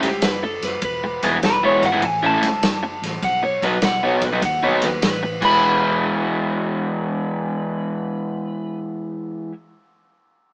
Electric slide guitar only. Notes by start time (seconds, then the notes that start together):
0.04 G4
0.24 B4
0.44 A4
0.65 B4
0.85 B4
3.24 F#5
3.45 C#5
3.65 B4
3.85 F#5
4.05 C#5
4.25 B4
4.45 F#5
4.64 C#5
4.85 B4
5.05 B4
5.44 B4